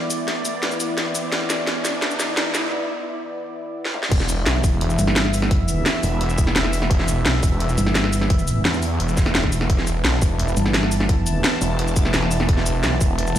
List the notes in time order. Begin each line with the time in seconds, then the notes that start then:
Already playing: E3 B3 E4 D5, riser
0.10 closed hi-hat, shaker
0.28 snare, closed hi-hat
0.45 closed hi-hat, shaker
0.63 snare, closed hi-hat
0.71 shaker
0.80 closed hi-hat, shaker
0.98 snare, closed hi-hat
1.15 closed hi-hat, shaker
1.32 snare, closed hi-hat
1.50 snare, closed hi-hat, shaker
1.67 snare, closed hi-hat
1.85 snare, closed hi-hat, shaker
2.02 snare, closed hi-hat
2.11 shaker
2.20 snare, closed hi-hat, shaker
2.37 snare, closed hi-hat
2.55 snare, closed hi-hat, shaker
3.85 snare
3.94 mid tom
4.03 snare
4.12 E1 E3 B3 E4 E5, kick, closed hi-hat, crash
4.20 snare
4.29 closed hi-hat, shaker
4.46 B1, snare, closed hi-hat
4.64 E1, kick, open hi-hat, shaker
4.81 closed hi-hat
4.90 shaker
4.99 G1, closed hi-hat, shaker
5.07 snare
5.16 snare, closed hi-hat
5.25 snare
5.34 open hi-hat, shaker
5.42 snare
5.51 kick, closed hi-hat
5.69 closed hi-hat, shaker
5.86 snare, closed hi-hat
6.03 E1, open hi-hat, shaker
6.21 closed hi-hat
6.30 shaker
6.38 E1, kick, closed hi-hat, shaker
6.47 snare
6.56 snare, closed hi-hat
6.64 snare
6.73 open hi-hat, shaker
6.82 snare
6.91 E1, kick, closed hi-hat
6.99 snare
7.08 closed hi-hat, shaker
7.26 B1, snare, closed hi-hat
7.43 E1, kick, open hi-hat, shaker
7.60 closed hi-hat
7.69 shaker
7.78 G1, closed hi-hat, shaker
7.87 snare
7.95 snare, closed hi-hat
8.04 snare
8.13 open hi-hat, shaker
8.21 snare
8.30 kick, closed hi-hat
8.39 shaker
8.48 closed hi-hat, shaker
8.65 E2, snare, closed hi-hat
8.74 shaker
8.83 open hi-hat, shaker
9.00 E1, closed hi-hat
9.09 shaker
9.17 kick, snare, closed hi-hat, shaker
9.26 snare
9.35 snare, closed hi-hat
9.44 kick, snare
9.52 open hi-hat, shaker
9.61 snare
9.70 E1 A5, kick, closed hi-hat
9.78 snare
9.87 closed hi-hat, shaker
10.05 B1, snare, closed hi-hat
10.22 E1, kick, open hi-hat, shaker
10.39 closed hi-hat
10.48 shaker
10.57 G1, closed hi-hat, shaker
10.66 snare
10.74 snare, closed hi-hat
10.83 snare
10.92 open hi-hat, shaker
11.00 snare
11.09 kick, closed hi-hat
11.27 closed hi-hat, shaker
11.44 snare, closed hi-hat
11.62 E1, open hi-hat, shaker
11.79 closed hi-hat
11.88 shaker
11.96 E1, kick, closed hi-hat, shaker
12.05 snare
12.14 snare, closed hi-hat
12.23 snare
12.31 open hi-hat, shaker
12.40 snare
12.49 E1, kick, closed hi-hat
12.57 snare
12.66 closed hi-hat, shaker
12.84 B1, snare, closed hi-hat
13.01 E1, kick, open hi-hat, shaker
13.19 closed hi-hat
13.27 shaker